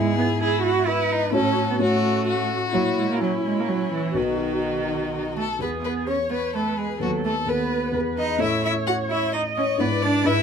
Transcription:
Already playing: G#2 G#3 B3 E4 G#4 E5
0.18 B3
0.40 E4 G#4
0.63 F#4
0.87 E4 B4
1.12 D#4
1.32 A2 C#4 F#4 A4 C#5
1.70 B3
1.79 A2 A3 C#4 F#4 C#5
2.27 F#4
2.72 A#2 F#3 E4 F#4 C#5
2.98 G#3
3.11 A#3
3.22 F#3 C#4
3.45 G#3
3.60 A#3
3.68 F#3
3.93 E3
4.14 B1 D#3 D#4 F#4 B4
5.37 A3 A4
5.59 E2 B3 G#4 B4
5.83 B3 B4
6.07 C#4 C#5
6.30 B3 B4
6.54 A3 A4 B4
6.77 G#3 G#4
6.99 D#2 F#3 B3 F#4 A4 B4
7.25 A3 A4
7.46 D#2 B3 A4 B4
7.92 E2 B3 G#4 B4
8.18 D#4 D#5
8.39 A2 C#4 E4 A4 C#5 E5
8.63 E4 E5
8.87 F#4 F#5
9.09 E4 E5
9.33 D#4 D#5
9.57 C#4 C#5
9.78 G#2 B3 D4 E4 B4 D5
10.02 D4 D5
10.23 G#2 D4 E4 B4 E5

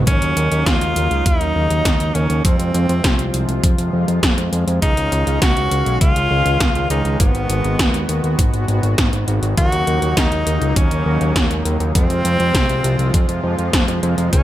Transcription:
0.07 D#2 C#3 F#3 A#3 C#4 D#4, kick, closed hi-hat
0.22 D#2, closed hi-hat
0.37 D#2, closed hi-hat
0.52 D#2, closed hi-hat
0.66 D#2 F4, kick, snare, closed hi-hat
0.81 D#2, closed hi-hat
0.96 D#2, closed hi-hat
1.11 C#2, closed hi-hat
1.26 D#2 D#4, kick, closed hi-hat
1.41 D#2, closed hi-hat
1.56 D#2
1.70 D#2, closed hi-hat
1.85 D#2, kick, snare, closed hi-hat
2.00 D#2, closed hi-hat
2.15 D#2 C#4, closed hi-hat
2.30 D#2, closed hi-hat
2.44 F2 C3 F3 G#3 C4 F4, kick, closed hi-hat
2.60 F2, closed hi-hat
2.74 F2, closed hi-hat
2.89 F2, closed hi-hat
3.04 C2, kick, snare, closed hi-hat
3.19 C2, closed hi-hat
3.34 C2, closed hi-hat
3.49 C2, closed hi-hat
3.64 F2, kick, closed hi-hat
3.78 F2, closed hi-hat
3.93 F2
4.08 F2, closed hi-hat
4.23 F2, kick, snare, closed hi-hat
4.38 F2, closed hi-hat
4.53 F2, closed hi-hat
4.67 F2, closed hi-hat
4.82 C#2 D#3 C#4 D#4 F5, kick, closed hi-hat
4.97 C#2, closed hi-hat
5.12 C#2, closed hi-hat
5.27 C#2, closed hi-hat
5.42 C#2 F#4, kick, snare, closed hi-hat
5.56 C#2, closed hi-hat
5.71 C#2, closed hi-hat
5.86 B1, closed hi-hat
6.01 C#2 F4, kick, closed hi-hat
6.16 C#2, closed hi-hat
6.31 C#2
6.46 C#2, closed hi-hat
6.60 C#2, kick, snare, closed hi-hat
6.75 C#2, closed hi-hat
6.90 C#2 D#4, closed hi-hat
7.05 C#2, closed hi-hat
7.20 G#1 B3 F#4, kick, closed hi-hat
7.35 G#1, closed hi-hat
7.50 G#1, closed hi-hat
7.64 G#1, closed hi-hat
7.79 D#2, kick, snare, closed hi-hat
7.94 D#2, closed hi-hat
8.09 D#2, closed hi-hat
8.24 D#2, closed hi-hat
8.39 G#1, kick, closed hi-hat
8.54 G#1, closed hi-hat
8.68 G#1, closed hi-hat
8.83 G#1, closed hi-hat
8.98 G#1, kick, snare, closed hi-hat
9.13 G#1, closed hi-hat
9.28 G#1, closed hi-hat
9.43 G#1, closed hi-hat
9.57 D#2 C#3 F#3 A#3 D#4 F#4, kick, closed hi-hat
9.72 D#2, closed hi-hat
9.87 D#2, closed hi-hat
10.02 D#2, closed hi-hat
10.17 D#2 D#4, kick, snare, closed hi-hat
10.32 D#2, closed hi-hat
10.47 D#2, closed hi-hat
10.61 C#2, closed hi-hat
10.76 D#2 C#4, kick, closed hi-hat
10.91 D#2, closed hi-hat
11.06 D#2
11.21 D#2, closed hi-hat
11.36 D#2, kick, snare, closed hi-hat
11.51 D#2, closed hi-hat
11.65 D#2, closed hi-hat
11.80 D#2, closed hi-hat
11.95 F2 C3 F3 G#3 C4 F4, kick, closed hi-hat
12.10 F2, closed hi-hat
12.25 F2, closed hi-hat
12.40 F2, closed hi-hat
12.55 C2, kick, snare, closed hi-hat
12.69 C2, closed hi-hat
12.84 C2, closed hi-hat
12.99 C2, closed hi-hat
13.14 F2, kick, closed hi-hat
13.29 F2, closed hi-hat
13.44 F2
13.59 F2, closed hi-hat
13.73 F2, kick, snare, closed hi-hat
13.88 F2, closed hi-hat
14.03 F2, closed hi-hat
14.18 F2, closed hi-hat
14.33 C#2 C#3 C#4 D#4, kick, closed hi-hat

